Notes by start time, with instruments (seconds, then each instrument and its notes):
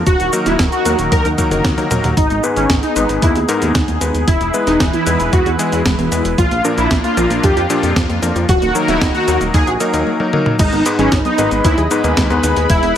0.06 analog synth bass D#1, analog synth pad D#3 D#4 F#4 A#4, analog synth lead F#4, kick, closed hi-hat, cabasa
0.20 analog synth bass D#1, closed hi-hat, cabasa
0.33 electric grand piano F#3 A#3 D#4 A#4, closed hi-hat, cabasa
0.46 analog synth bass D#1, analog synth lead E4, snare, closed hi-hat, cabasa
0.59 analog synth bass D#1, kick, snare, closed hi-hat, cabasa
0.72 analog synth lead F#4, closed hi-hat, cabasa
0.85 analog synth bass D#2, electric grand piano F#3 A#3 D#4 A#4, closed hi-hat, cabasa
0.99 analog synth bass D#1, closed hi-hat, cabasa
1.12 analog synth bass D#2, analog synth lead A#4, kick, closed hi-hat, high tom, cabasa
1.25 analog synth bass D#2, closed hi-hat, high tom, cabasa
1.38 electric grand piano F#3 A#3 D#4 A#4, kick, closed hi-hat, high tom, cabasa
1.51 analog synth bass F#1, electric grand piano F#3 A#3 D#4 A#4, closed hi-hat, mid tom, cabasa
1.64 analog synth bass D#2, kick, snare, closed hi-hat, mid tom, cabasa
1.77 analog synth bass D#2, electric grand piano F#3 A#3 D#4 A#4, closed hi-hat, cabasa
1.91 analog synth bass D#2, electric grand piano F#3 A#3 D#4 A#4, closed hi-hat, mid tom, cabasa
2.04 analog synth bass D#2, closed hi-hat, mid tom, cabasa
2.17 analog synth bass G#1, synth arpeggio sound G#3, analog synth pad B3 D#4 G#4, analog synth lead D#4, kick, closed hi-hat, cabasa
2.30 analog synth bass G#1, synth arpeggio sound B3, closed hi-hat, cabasa
2.43 electric grand piano G#2 G#3 B3 D#4 B4, synth arpeggio sound D#4, cabasa
2.56 analog synth bass G#1, analog synth lead C#4, synth arpeggio sound G#4, closed hi-hat, cabasa
2.70 analog synth bass G#1, kick, snare, closed hi-hat, cabasa
2.83 synth arpeggio sound B3, analog synth lead D#4, closed hi-hat, cabasa
2.96 analog synth bass G#1, electric grand piano G#2 G#3 B3 D#4 B4, synth arpeggio sound G#3, closed hi-hat, cabasa
3.09 analog synth bass G#1, synth arpeggio sound B3, closed hi-hat, cabasa
3.22 analog synth bass D#2, synth arpeggio sound D#4, analog synth lead E4, kick, closed hi-hat, cabasa
3.35 analog synth bass D#2, synth arpeggio sound G#4, closed hi-hat, cabasa
3.49 electric grand piano G#2 G#3 B3 D#4 A#4, synth arpeggio sound D#4, closed hi-hat, cabasa
3.62 analog synth bass D#2, synth arpeggio sound B3, closed hi-hat, cabasa
3.75 analog synth bass D#2, synth arpeggio sound G#3, kick, snare, closed hi-hat, cabasa
3.88 analog synth bass D#2, synth arpeggio sound B3, closed hi-hat, cabasa
4.01 analog synth bass D#2, electric grand piano G#3 B3 D#4 B4, synth arpeggio sound D#4, closed hi-hat, cabasa
4.14 analog synth bass D#2, synth arpeggio sound G#4, closed hi-hat, cabasa
4.27 analog synth bass E1, analog synth pad E3 E4 B4, synth arpeggio sound G#3, analog synth lead E4, kick, closed hi-hat, cabasa
4.41 analog synth bass E1, synth arpeggio sound B3, closed hi-hat, cabasa
4.54 electric grand piano G#3 B3 E4 B4, synth arpeggio sound E4, cabasa
4.67 analog synth bass E1, analog synth lead D#4, synth arpeggio sound G#4, snare, closed hi-hat, cabasa
4.80 analog synth bass E1, synth arpeggio sound E4, kick, snare, closed hi-hat, cabasa
4.93 synth arpeggio sound B3, analog synth lead E4, closed hi-hat, cabasa
5.06 analog synth bass E2, electric grand piano G#3 B3 E4 B4, synth arpeggio sound G#3, closed hi-hat, cabasa
5.19 analog synth bass E1, synth arpeggio sound B3, closed hi-hat, cabasa
5.33 analog synth bass E2, synth arpeggio sound E4, analog synth lead F#4, kick, closed hi-hat, cabasa
5.46 analog synth bass E2, synth arpeggio sound G#4, closed hi-hat, cabasa
5.59 electric grand piano G#3 B3 E4 G#4, synth arpeggio sound E4, closed hi-hat, cabasa
5.72 analog synth bass E2, synth arpeggio sound B3, closed hi-hat, cabasa
5.85 analog synth bass E1, synth arpeggio sound G#3, kick, snare, closed hi-hat, cabasa
5.99 analog synth bass E1, synth arpeggio sound B3, closed hi-hat, cabasa
6.12 analog synth bass E2, electric grand piano G#3 B3 E4 B4, synth arpeggio sound E4, closed hi-hat, cabasa
6.25 analog synth bass E1, synth arpeggio sound G#4, closed hi-hat, cabasa
6.38 analog synth bass A#1, synth arpeggio sound F3, analog synth pad A#3 D4 F4, analog synth lead F4, kick, closed hi-hat, cabasa
6.51 analog synth bass A#1, synth arpeggio sound A#3, closed hi-hat, cabasa
6.64 electric grand piano A#2 F3 A#3 D4 A#4, synth arpeggio sound D4, cabasa
6.78 analog synth bass A#1, analog synth lead E4, synth arpeggio sound F4, closed hi-hat, cabasa
6.91 analog synth bass A#1, synth arpeggio sound D4, kick, snare, closed hi-hat, cabasa
7.04 synth arpeggio sound A#3, analog synth lead F4, closed hi-hat, cabasa
7.17 analog synth bass A#1, electric grand piano A#2 F3 A#3 D4 A#4, synth arpeggio sound F3, closed hi-hat, cabasa
7.30 analog synth bass A#1, synth arpeggio sound A#3, closed hi-hat, cabasa
7.43 analog synth bass F2, synth arpeggio sound D4, analog synth lead G4, kick, closed hi-hat, cabasa
7.57 analog synth bass F2, synth arpeggio sound F4, closed hi-hat, cabasa
7.70 electric grand piano A#2 F3 A#3 D4 G4, synth arpeggio sound D4, closed hi-hat, cabasa
7.83 analog synth bass F2, synth arpeggio sound A#3, closed hi-hat, cabasa
7.96 analog synth bass F2, synth arpeggio sound F3, kick, snare, closed hi-hat, cabasa
8.09 analog synth bass F2, synth arpeggio sound A#3, closed hi-hat, cabasa
8.22 analog synth bass F2, electric grand piano F3 A#3 D4 A#4, synth arpeggio sound D4, closed hi-hat, cabasa
8.36 analog synth bass F2, synth arpeggio sound F4, closed hi-hat, cabasa
8.49 analog synth bass D#1, analog synth pad D#3 D#4 F#4 A#4, synth arpeggio sound F#3, analog synth lead F#4, kick, closed hi-hat, cabasa
8.62 analog synth bass D#1, synth arpeggio sound A#3, closed hi-hat, cabasa
8.75 electric grand piano F#3 A#3 D#4 A#4, synth arpeggio sound D#4, cabasa
8.88 analog synth bass D#1, analog synth lead E4, synth arpeggio sound F#4, snare, closed hi-hat, cabasa
9.01 analog synth bass D#1, synth arpeggio sound D#4, kick, snare, closed hi-hat, cabasa
9.15 synth arpeggio sound A#3, analog synth lead F#4, closed hi-hat, cabasa
9.28 analog synth bass D#2, electric grand piano F#3 A#3 D#4 A#4, synth arpeggio sound F#3, closed hi-hat, cabasa
9.41 analog synth bass D#1, synth arpeggio sound A#3, closed hi-hat, cabasa
9.54 analog synth bass D#2, synth arpeggio sound D#4, analog synth lead G#4, kick, closed hi-hat, cabasa
9.67 analog synth bass A#1, synth arpeggio sound F#4, closed hi-hat, cabasa
9.80 electric grand piano F#3 A#3 D#4 A#4, synth arpeggio sound D#4, closed hi-hat, cabasa
9.94 analog synth bass D#2, electric grand piano F#3 A#3 D#4 A#4, synth arpeggio sound A#3, closed hi-hat, cabasa
10.07 high tom
10.20 electric grand piano F#3 A#3 D#4 A#4, high tom
10.33 electric grand piano F#3 A#3 D#4 A#4, mid tom
10.46 mid tom
10.59 analog synth bass G#1, synth arpeggio sound G#3, analog synth lead D#4, analog synth pad G#4 B4 D#5 B5, kick, closed hi-hat, crash, cabasa
10.72 analog synth bass G#1, synth arpeggio sound B3, closed hi-hat, cabasa
10.86 electric grand piano G#2 G#3 B3 D#4 B4, synth arpeggio sound D#4, closed hi-hat, cabasa
10.99 analog synth bass G#1, analog synth lead C#4, synth arpeggio sound G#4, closed hi-hat, high tom, cabasa
11.12 analog synth bass G#1, synth arpeggio sound D#4, kick, snare, closed hi-hat, cabasa
11.25 synth arpeggio sound B3, analog synth lead D#4, closed hi-hat, high tom, cabasa
11.38 analog synth bass G#1, electric grand piano G#2 G#3 B3 D#4 B4, synth arpeggio sound G#3, closed hi-hat, cabasa
11.51 analog synth bass G#1, synth arpeggio sound B3, closed hi-hat, cabasa
11.65 analog synth bass D#2, synth arpeggio sound D#4, analog synth lead E4, kick, closed hi-hat, cabasa
11.78 analog synth bass D#2, synth arpeggio sound G#4, closed hi-hat, high tom, cabasa
11.91 electric grand piano G#2 G#3 B3 D#4 B4, synth arpeggio sound D#4, closed hi-hat, cabasa
12.04 analog synth bass D#2, electric grand piano G#2 G#3 B3 D#4 B4, synth arpeggio sound B3, closed hi-hat, cabasa
12.17 analog synth bass D#2, synth arpeggio sound G#3, kick, snare, closed hi-hat, cabasa
12.30 analog synth bass D#2, electric grand piano G#2 G#3 B3 D#4 B4, synth arpeggio sound B3, closed hi-hat, cabasa
12.43 analog synth bass D#2, electric grand piano G#3 B3 D#4 B4, synth arpeggio sound D#4, closed hi-hat, cabasa
12.57 analog synth bass D#2, synth arpeggio sound G#4, closed hi-hat, cabasa
12.70 analog synth bass E1, synth arpeggio sound G#3, analog synth lead E4, analog synth pad E5, kick, closed hi-hat, cabasa
12.83 analog synth bass E1, synth arpeggio sound B3, closed hi-hat, cabasa